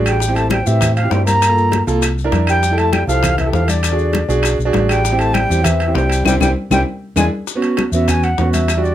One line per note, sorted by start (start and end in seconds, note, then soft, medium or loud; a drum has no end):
0.00 0.61 A1 medium
0.00 0.15 D4 medium
0.00 0.15 F#4 medium
0.00 0.15 G#4 loud
0.05 0.38 G3 medium
0.05 0.37 G5 medium
0.05 high bongo soft
0.05 high conga soft
0.05 high timbale medium
0.05 claves medium
0.05 maracas medium
0.20 high bongo medium
0.20 high conga soft
0.20 maracas medium
0.28 0.55 C4 medium
0.28 0.55 E4 medium
0.28 0.55 G4 medium
0.35 0.49 A3 medium
0.35 0.51 A5 medium
0.35 high bongo soft
0.35 high conga soft
0.35 high timbale medium
0.35 maracas soft
0.49 0.65 G3 medium
0.49 0.68 G5 medium
0.49 high bongo medium
0.49 high conga loud
0.49 high timbale medium
0.49 claves medium
0.49 maracas soft
0.64 1.09 A2 medium
0.64 0.95 E3 medium
0.64 0.93 C4 medium
0.64 0.93 E4 medium
0.64 0.93 G4 medium
0.64 0.95 E5 medium
0.64 high bongo soft
0.64 high conga soft
0.64 maracas medium
0.81 high bongo medium
0.81 high conga soft
0.81 low conga medium
0.81 high timbale medium
0.81 claves medium
0.81 maracas medium
0.95 1.12 F3 medium
0.95 1.12 F5 medium
0.95 high conga soft
0.95 high timbale medium
0.95 maracas soft
1.02 1.35 C4 medium
1.02 1.36 E4 medium
1.02 1.36 G4 medium
1.11 1.81 G2 medium
1.11 1.26 G3 medium
1.11 1.25 G5 medium
1.11 high bongo medium
1.11 low bongo medium
1.11 high conga soft
1.11 low timbale medium
1.11 maracas soft
1.26 1.83 A#3 medium
1.26 1.83 A#5 loud
1.26 high bongo soft
1.26 high conga medium
1.26 high timbale medium
1.26 maracas medium
1.42 high bongo medium
1.42 high conga soft
1.42 high timbale loud
1.42 claves medium
1.42 maracas medium
1.49 1.76 A#3 medium
1.49 1.76 F4 medium
1.49 1.76 A4 medium
1.57 high bongo soft
1.57 high conga soft
1.57 maracas soft
1.72 high bongo medium
1.72 high conga medium
1.72 high timbale medium
1.72 maracas soft
1.87 2.29 C2 medium
1.87 2.02 A#3 medium
1.87 2.02 F4 medium
1.87 2.03 A4 loud
1.87 high bongo soft
1.87 high conga soft
1.87 maracas medium
2.02 high bongo medium
2.02 high conga soft
2.02 high timbale medium
2.02 claves medium
2.02 maracas medium
2.18 high conga soft
2.18 maracas soft
2.24 2.57 D4 medium
2.24 2.57 E4 medium
2.24 2.57 A#4 loud
2.32 3.02 F2 medium
2.32 high bongo medium
2.32 low bongo medium
2.32 high conga medium
2.32 high timbale medium
2.32 maracas soft
2.47 2.80 G3 medium
2.47 2.80 G5 loud
2.47 high bongo soft
2.47 high conga soft
2.47 high timbale medium
2.47 claves medium
2.47 maracas medium
2.63 high bongo medium
2.63 high conga soft
2.63 maracas medium
2.71 2.97 E4 medium
2.71 2.98 G4 medium
2.71 2.98 A4 medium
2.77 2.95 A3 medium
2.77 2.94 A5 medium
2.77 high bongo soft
2.77 high conga soft
2.77 high timbale medium
2.77 maracas soft
2.93 3.08 G3 medium
2.93 3.07 G5 medium
2.93 high bongo medium
2.93 high conga loud
2.93 high timbale medium
2.93 claves medium
2.93 maracas soft
3.07 3.50 C2 medium
3.07 3.36 F3 medium
3.07 3.34 E4 medium
3.07 3.34 G4 medium
3.07 3.35 A4 medium
3.07 3.36 F5 loud
3.07 high bongo soft
3.07 high conga soft
3.07 maracas medium
3.23 high bongo medium
3.23 high conga soft
3.23 low conga medium
3.23 high timbale medium
3.23 claves medium
3.23 maracas medium
3.38 3.52 E3 medium
3.38 3.52 E5 medium
3.38 high conga soft
3.38 low conga medium
3.38 high timbale medium
3.38 maracas soft
3.45 3.77 E4 medium
3.45 3.78 G4 medium
3.45 3.78 A4 medium
3.52 4.23 E2 medium
3.52 3.70 F3 medium
3.52 3.71 F5 medium
3.52 high bongo medium
3.52 low bongo medium
3.52 high conga soft
3.52 maracas soft
3.68 4.29 D3 medium
3.68 4.29 D5 medium
3.68 high bongo soft
3.68 high conga medium
3.68 high timbale medium
3.68 maracas medium
3.83 high bongo medium
3.83 high timbale medium
3.83 claves medium
3.83 maracas medium
3.92 4.18 D4 medium
3.92 4.18 F#4 medium
3.92 4.19 G#4 medium
3.99 high bongo soft
3.99 high conga soft
3.99 maracas soft
4.13 high bongo medium
4.13 high conga medium
4.13 high timbale medium
4.13 maracas soft
4.29 4.57 B1 medium
4.29 4.55 D4 medium
4.29 4.56 F#4 medium
4.29 4.56 G#4 loud
4.29 high bongo soft
4.29 high conga soft
4.29 maracas medium
4.43 high bongo medium
4.43 high conga soft
4.43 high timbale medium
4.43 claves medium
4.43 maracas medium
4.59 4.73 B1 medium
4.59 high conga soft
4.59 maracas soft
4.65 4.98 D4 loud
4.65 4.99 F#4 medium
4.65 4.99 G#4 loud
4.73 5.45 A1 medium
4.73 high bongo medium
4.73 low bongo medium
4.73 high conga medium
4.73 high timbale medium
4.73 low timbale medium
4.73 maracas soft
4.89 5.21 G3 medium
4.89 5.21 G5 loud
4.89 high bongo soft
4.89 high conga soft
4.89 high timbale medium
4.89 claves medium
4.89 maracas medium
5.05 high bongo medium
5.05 high conga soft
5.05 maracas medium
5.11 5.38 C4 medium
5.11 5.39 E4 medium
5.11 5.39 G4 medium
5.19 5.36 A3 medium
5.19 5.35 A5 loud
5.19 high bongo soft
5.19 high conga soft
5.19 high timbale medium
5.19 maracas soft
5.34 5.66 G3 medium
5.34 5.66 G5 loud
5.34 high bongo medium
5.34 high conga medium
5.34 high timbale medium
5.34 claves medium
5.34 maracas soft
5.49 5.93 E2 medium
5.49 5.76 C4 medium
5.49 5.76 E4 medium
5.49 5.77 G4 medium
5.49 high bongo soft
5.49 high conga soft
5.49 maracas medium
5.64 5.95 E3 medium
5.64 5.96 E5 loud
5.64 high bongo medium
5.64 high conga soft
5.64 low conga medium
5.64 high timbale medium
5.64 claves medium
5.64 maracas medium
5.80 high conga soft
5.80 high timbale medium
5.80 maracas soft
5.87 6.20 C4 medium
5.87 6.20 E4 medium
5.87 6.20 G4 medium
5.93 6.24 C2 loud
5.93 6.25 G3 medium
5.93 6.26 G5 loud
5.93 high bongo medium
5.93 low bongo medium
5.93 high conga soft
5.93 low timbale medium
5.98 maracas soft
6.09 high bongo soft
6.09 high timbale medium
6.09 maracas medium
6.25 6.37 C2 medium
6.25 6.34 G3 loud
6.25 6.36 C4 medium
6.25 6.36 E4 medium
6.25 6.36 G4 medium
6.25 6.36 G5 loud
6.25 low bongo medium
6.25 high conga loud
6.25 high timbale loud
6.25 claves loud
6.25 maracas loud
6.40 6.52 C2 loud
6.40 6.48 G3 loud
6.40 6.51 C4 medium
6.40 6.51 E4 medium
6.40 6.51 G4 medium
6.40 6.51 G5 medium
6.40 low bongo loud
6.40 high conga loud
6.40 high timbale loud
6.40 claves loud
6.40 maracas medium
6.70 6.82 C2 medium
6.70 6.79 G3 medium
6.70 6.81 C4 loud
6.70 6.81 E4 medium
6.70 6.81 G4 loud
6.70 6.82 G5 loud
6.70 low bongo loud
6.70 high conga loud
6.70 high timbale loud
6.70 claves loud
6.70 maracas medium
7.16 7.28 E2 loud
7.16 7.24 G#3 loud
7.16 7.27 D4 medium
7.16 7.27 E4 medium
7.16 7.27 G#4 medium
7.16 7.27 G#5 loud
7.16 low bongo loud
7.16 high conga loud
7.16 high timbale medium
7.16 claves loud
7.16 maracas loud
7.47 high bongo medium
7.47 high conga soft
7.47 maracas medium
7.55 7.82 B3 medium
7.55 7.82 C#4 medium
7.55 7.83 F#4 medium
7.62 high bongo soft
7.62 high conga soft
7.62 high timbale medium
7.62 maracas soft
7.77 high bongo medium
7.77 high conga medium
7.77 high timbale medium
7.77 claves medium
7.77 maracas soft
7.92 8.35 E2 medium
7.92 8.26 B3 medium
7.92 8.26 C#4 medium
7.92 8.26 F#4 medium
7.92 8.11 E5 medium
7.92 high bongo soft
7.92 high conga soft
7.92 maracas medium
8.08 8.25 G#5 loud
8.08 high bongo medium
8.08 high conga soft
8.08 low conga medium
8.08 high timbale medium
8.08 claves medium
8.08 maracas medium
8.23 8.52 F#5 medium
8.23 high conga soft
8.23 high timbale medium
8.23 maracas soft
8.38 8.95 E2 medium
8.38 8.66 B3 medium
8.38 8.66 C#4 medium
8.38 8.66 F#4 medium
8.38 high bongo medium
8.38 low bongo medium
8.38 high conga soft
8.38 low timbale medium
8.38 maracas soft
8.53 8.85 E5 medium
8.53 high bongo soft
8.53 high conga medium
8.53 high timbale medium
8.53 maracas medium
8.68 high bongo medium
8.68 high conga soft
8.68 high timbale medium
8.68 claves medium
8.68 maracas medium
8.77 8.95 G3 medium
8.77 8.95 D4 medium
8.77 8.95 F#4 medium
8.84 8.95 D5 medium
8.84 high bongo soft
8.84 high conga soft
8.84 maracas soft